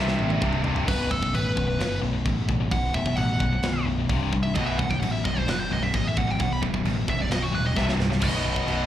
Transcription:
Already playing: C2 G2 C3 E5
0.08 snare
0.19 A1, high tom
0.30 high tom
0.41 C1 C2 G2 C3, kick, mid tom
0.53 mid tom
0.63 C1 C2 G2 C3, floor tom
0.76 floor tom
0.86 B0 B1 F#2 B2 B4, kick, crash
1.09 B0 B1 F#2 A4, kick
1.22 B1 F#2, kick
1.33 A1 B1 F#2 B4, crash
1.56 B0 B1 F#2, kick
1.66 B1 F#2
1.79 F#1 B1 F#2 B2, snare, crash
2.01 B0 B1 F#2
2.13 B1 F#2
2.25 A1 B1 F#2, kick, crash
2.49 B1 F#2, kick
2.60 B1 F#2
2.71 B0 B1 F#2 B2 F#5, kick, crash
2.94 B0 B1 F#2 E5, kick
3.06 B1 F#2, kick
3.16 A1 B1 F#2 F#5, crash
3.40 B0 B1 F#2, kick
3.52 B1 F#2
3.61 B0 B1 F#2 B2, snare, crash
3.86 B0 B1 F#2
3.99 B1 F#2
4.09 C1 C2 G2 C3, kick, crash
4.33 C1 C2 G2, kick
4.43 C2 G2 E5
4.55 B0 B1 F#2 B2 D#5, kick, crash
4.66 E5
4.79 B0 B1 F#2 F#5, kick
4.90 B1 F#2 G5, kick
5.00 A1 B1 F#2 F#5, crash
5.12 E5
5.25 B0 B1 F#2 D#5, kick
5.36 B1 F#2 C5
5.47 F#1 B1 F#2 B2 B4, snare, crash
5.60 C5
5.70 B0 B1 F#2 D#5
5.82 B1 F#2 E5
5.94 A1 B1 F#2 D#5, kick, crash
6.07 E5
6.17 B1 F#2 F#5, kick
6.28 B1 F#2 G5
6.40 B0 B1 F#2 B2 F#5, kick, crash
6.53 B5
6.62 B0 B1 F#2, kick
6.74 B1 F#2, kick
6.85 A1 B1 F#2, crash
7.08 B0 B1 F#2 E5, kick
7.19 B1 F#2 D5
7.30 B0 B1 F#2 B2 D#5, snare, crash
7.42 F#4
7.52 D#1 B1 F#2 B4
7.65 B1 F#2 D#5
7.76 C1 C2 G2 C3 E5, kick, snare
7.89 snare
7.99 C1 C2 G2, snare
8.10 C2 G2, snare
8.20 B0 B1 F#2 B2 D#5, kick, crash, china
8.45 B0
8.56 kick
8.66 B0 B1 F#2 B2, china

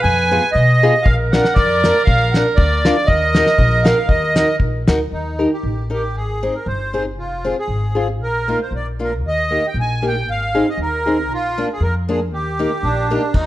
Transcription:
Already playing: B4
0.03 F2 G#5
0.31 B3 F4 G#4
0.52 B2 D#5
0.83 B3 F4 G#4
1.02 A#1 A#4 F5, kick
1.31 D4 F4 A#4 F#5, snare, hi-hat pedal
1.44 snare
1.54 F2 D5, kick, snare
1.84 D4 F4 A#4, snare, hi-hat pedal
2.04 A#1 F5, kick
2.32 F#5, snare, hi-hat pedal
2.36 D4 F4 A#4
2.56 D2 D5, kick
2.85 D4 F4 A#4, snare, hi-hat pedal
3.06 D#2 A#4 D#5, kick
3.35 D#4 F#4 A#4, snare, hi-hat pedal
3.46 snare
3.58 A#1, kick
3.83 D#4 F#4 A#4 F5, snare, hi-hat pedal
4.08 D#2 D#5, kick
4.36 D#4 F#4 A#4, snare, hi-hat pedal
4.60 A#1, kick
4.88 D2 D#4 F#4 A#4, snare, hi-hat pedal
5.12 D#2 D#4
5.39 D#4 G4 A#4
5.53 G4
5.63 A1
5.90 D#4 G4 A#4
6.15 G#1 G#4
6.43 C4 D#4 G#4
6.55 A#4
6.66 G1 C5
6.93 C4 D#4 G#4
7.16 F1 F4
7.44 C4 F4 G#4
7.59 G#4
7.68 G#1
7.95 C4 F4 G#4
8.19 A#1 A#4
8.48 A#3 D#4 F4
8.62 C5
8.71 A#1
8.76 D5
8.99 A#3 D4 F4
9.04 A#4
9.23 D#2
9.27 D#5
9.50 A#3 D#4 G4
9.67 G5
9.74 A#1
9.80 G#5
10.02 A#3 D#4 G4
10.07 G5
10.26 G#1 F5
10.55 C4 D#4 G#4
10.69 D#5
10.78 D#2
10.82 A#4
11.06 C4 D#4 G#4
11.29 A#1
11.33 F4
11.58 A#3 D4 F4
11.72 G#4
11.80 F2 A#4
12.09 A#3 D4 F4 G#4
12.32 D#2 G4
12.59 A#3 D#4 G4
12.83 A#1 D4
13.11 A#3 D#4 G4
13.34 D#2 D#4 F#4, kick, crash

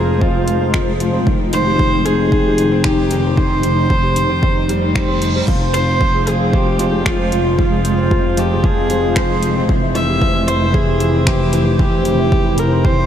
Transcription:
Already playing: F1 F3 G#3 C4 F4 G#4 C5
0.08 G#4
0.21 F3 F4, kick
0.35 C4
0.48 F3, closed hi-hat
0.61 F4
0.74 F3, finger snap, kick
0.87 G#4
1.00 F3, closed hi-hat
1.13 C4
1.27 F1 D#3 D#4 C5, kick
1.40 D#4
1.53 D#3 C5, closed hi-hat
1.66 G4
1.79 D#3, kick
1.93 C4
2.05 D#3 G#4, closed hi-hat
2.19 D#4
2.32 D#3, kick
2.45 G4
2.58 D#3, closed hi-hat
2.72 C4
2.84 D#3 G4, finger snap, kick
2.98 D#4
3.11 D#3, closed hi-hat
3.24 G4
3.37 D#3 C5, kick
3.50 C4
3.63 D#3, closed hi-hat
3.77 D#4
3.90 D#3, kick
4.03 G4
4.16 D#3, closed hi-hat
4.29 C4
4.43 D#3, kick, reverse cymbal
4.56 D#4
4.69 G3, closed hi-hat
4.82 D#3
4.95 C4, finger snap, kick
5.08 C4
5.22 D#4, closed hi-hat
5.35 G3
5.48 F1 F3 G#3 F4, kick, crash
5.61 C4
5.73 F3 C5, closed hi-hat
5.87 F4
6.00 F3, kick
6.13 G#4
6.27 F3 G#4, closed hi-hat
6.40 C4
6.53 F3 G4, kick
6.66 F4
6.79 F3, closed hi-hat
6.92 G#4
7.05 F3 F4, finger snap, kick
7.19 C4
7.32 F3, closed hi-hat
7.45 F4
7.58 F3 F4, kick
7.71 G#4
7.85 F3, closed hi-hat
7.98 C4
8.11 F3, kick
8.24 F4
8.37 F3 G4, closed hi-hat
8.50 G#4
8.63 F3 G#4, kick
8.76 C4
8.90 F3, closed hi-hat
9.03 F4
9.16 F3 C5, finger snap, kick
9.30 G#4
9.43 F3, closed hi-hat
9.56 C4
9.69 F1 E3 E4, kick
9.82 E4
9.95 E3 E5, closed hi-hat
10.08 G4
10.22 E3, kick
10.35 C4
10.48 E3 C5, closed hi-hat
10.61 E4
10.74 E3 G#4, kick
10.87 G4
11.00 E3, closed hi-hat
11.14 C4
11.27 E3 G4, finger snap, kick
11.40 E4
11.53 E3, closed hi-hat
11.67 G4
11.79 E3 G4, kick
11.93 C4
12.05 E3, closed hi-hat
12.20 E4
12.32 E3, kick
12.45 G4
12.58 E3 A#4, closed hi-hat
12.72 C4
12.85 E3 C5, kick
12.98 E4

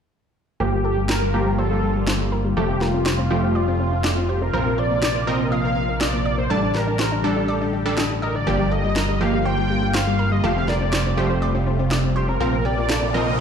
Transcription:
0.60 G1 D3 F3 G3 A#3 F4 G4
0.73 G3
0.84 A4
0.97 G3
1.09 A#4, snare
1.22 G3
1.34 F3 G3 A#3 G4
1.46 G3
1.58 A4 C5
1.71 G3
1.83 G3
1.96 G3
2.07 C5, snare
2.20 G3
2.32 A#4
2.45 G3
2.57 F1 C3 F3 A3 F4 G4 A4
2.69 C4
2.81 F4 A#4, snare
2.94 C4
3.06 C5, snare
3.18 C4
3.31 F3 A3 C4 G4
3.43 C4
3.55 D5
3.68 C4
3.80 C4
3.92 C4
4.04 D5, snare
4.17 C4
4.29 G4 C5
4.41 C4 A#4
4.53 A#1 F3 A#3 C4 A#4
4.66 A#3
4.78 C5 D5
4.91 A#3
5.02 D5, snare
5.15 A#3
5.27 F3 A#3 C4 A#4 D#5
5.40 A#3
5.52 D#5 F5
5.64 A#3
5.76 A#3
5.89 A#3
6.01 D5 D#5, snare
6.13 A#3
6.25 D5
6.38 A#3 C5
6.50 A1 D3 G3 D4 G4 A4 D5 A5
6.62 D4
6.74 A#4, snare
6.87 D4
6.99 C5, snare
7.12 D4
7.24 G3 D4 A4
7.36 D4
7.48 D5
7.61 D4
7.73 D4
7.86 G3 D4 A4
7.97 D#5, snare
8.10 D4
8.22 A#4 D#5
8.35 D4 D5
8.47 G1 F3 A#3 F4 G4
8.59 G3
8.72 A4 D#5
8.84 G3
8.96 A#4, snare
9.09 G3
9.21 F3 G3 A#3 G4 F5
9.33 G3
9.45 C5 G5
9.58 G3
9.70 G3
9.82 G3
9.94 C5 F5, snare
10.07 G3
10.19 A#4
10.32 G3 D#5
10.44 F1 C3 F3 G3 A3 G4 A4 F5
10.56 C4
10.68 A#4 D5, snare
10.81 C4
10.93 C5, snare
11.06 C4
11.17 F3 A3 C4 G4 C5
11.30 C4
11.42 D5
11.55 C4
11.67 C4
11.79 C4
11.91 D5, snare
12.04 C4
12.16 G4 C5
12.28 C4 A#4
12.40 A#1 F3 A#3 C4 F4 A#4, riser
12.53 A#3
12.65 G4 D5
12.78 A#3
12.89 A4, snare
13.02 A#3
13.14 F3 A#3 C4 A#4 D#5
13.27 A#3

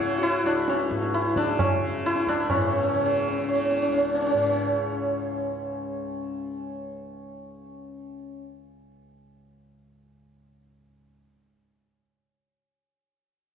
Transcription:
Already playing: C#2 G#2 C#3 C#4 E4 F#4 G#4 B4 C#5
0.10 tabla te
0.18 F#4
0.22 E4, tabla tin
0.43 C#2 D4
0.68 C#4, tabla te
0.79 tabla te
0.89 G#2, tabla ke
1.03 tabla te
1.14 E4, tabla te
1.25 tabla te
1.35 C#3 D4, tabla ke
1.47 tabla te
1.59 C#4, tabla na, tabla ge
1.80 C#3, tabla ge
2.05 E4, tabla te
2.16 tabla te
2.27 C#2 D4, tabla ke
2.39 tabla te
2.50 G#2 C#4, tabla na, tabla ge
2.57 C#4
2.62 C#4
2.67 C#4
2.72 C#4
2.78 C#4
2.83 C#4
2.89 C#4
2.95 C#3 C#4
3.01 C#4
3.06 C#4
3.11 C#4
3.17 C#4
3.21 C#4
3.28 C#4
3.32 C#4
3.38 C#3 C#4
3.44 C#4
3.48 C#4
3.55 C#4
3.59 C#4
3.65 C#4
3.71 C#4
3.77 C#4
3.82 C#4
3.87 C#2 C#4
3.92 C#4
3.99 C#4
4.04 C#4
4.09 C#4
4.14 C#4
4.21 C#4
4.26 C#4
4.31 G#2 C#4
4.37 C#4
4.43 C#4
4.50 C#4
4.54 C#4

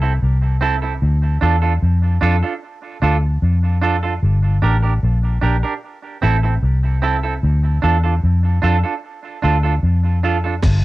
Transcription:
Already playing: C2
0.02 C4 E4 A4
0.23 C2
0.61 C4 E4 A4
0.82 C4 E4 A4
1.02 D2
1.41 E2 D4 F4 A4
1.62 D4 F4 A4
1.82 F2
2.21 F2 D4 F4 A4
2.42 D4 F4 A4
3.02 D2 D4 F4 A4
3.42 F2
3.81 D4 F4 A4
4.03 D4 F4 A4
4.23 G1
4.62 A1 D4 G4 A#4
4.83 D4 G4 A#4
5.03 A#1
5.42 A#1 D4 G4 A#4
5.63 D4 G4 A#4
6.22 A1 C4 E4 A4
6.43 C4 E4 A4
6.63 C2
7.02 C4 E4 A4
7.23 C4 E4 A4
7.43 D2
7.82 E2 D4 F4 A4
8.04 D4 F4 A4
8.23 F2
8.62 F2 D4 F4 A4
8.84 D4 F4 A4
9.42 D2 D4 F4 A4
9.63 D4 F4 A4
9.83 F2
10.23 D4 F4 A4
10.44 D4 F4 A4
10.62 G1, kick, closed hi-hat, crash, high bongo

